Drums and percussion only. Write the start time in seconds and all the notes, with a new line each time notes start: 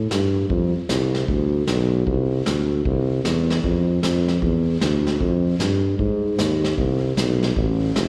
0.11 snare, hi-hat pedal
0.50 brush sweep, kick
0.89 snare, hi-hat pedal
1.15 snare
1.28 brush sweep, kick
1.67 snare, hi-hat pedal
2.07 brush sweep, kick
2.46 snare, hi-hat pedal
2.85 brush sweep, kick
3.25 snare, hi-hat pedal
3.50 snare
3.64 brush sweep, kick
4.03 snare, hi-hat pedal
4.28 snare
4.42 brush sweep, kick
4.81 snare, hi-hat pedal
5.07 snare
5.20 brush sweep, kick
5.60 snare, hi-hat pedal
5.99 brush sweep, kick
6.39 snare, hi-hat pedal
6.64 snare
6.78 brush sweep, kick
7.17 snare, hi-hat pedal
7.43 snare
7.56 brush sweep, kick
7.96 snare, hi-hat pedal